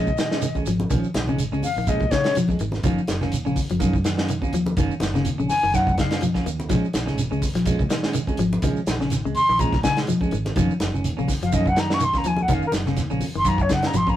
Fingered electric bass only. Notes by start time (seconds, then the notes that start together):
Already playing: A#2
0.67 G#1
0.90 A#1
1.15 A#1
1.39 G#1
1.52 C#2
1.76 A#1
1.87 A#2
2.60 G#1
2.84 F#1
3.08 F#1
3.33 D#2
3.46 A#1
3.70 F#1
3.80 F#2
4.53 D#2
4.77 F#1
5.00 F#1
5.25 D#2
5.38 A#1
5.63 F#1
5.74 F#2
6.46 D#2
6.70 A#1
6.95 A#1
7.18 G#1
7.31 C#2
7.55 A#1
7.66 A#2
8.39 G#1
8.62 A#1
8.87 A#1
9.12 G#1
9.25 C#2
9.49 A#1
9.59 A#2
10.33 G#1
10.56 F#1
10.81 F#1
11.04 D#2
11.18 A#1
11.42 F#1
11.53 F#2
12.25 D#2
12.48 F#1
12.73 F#1
12.98 D#2
13.11 A#1
13.35 F#1
13.45 F#2
13.94 G#1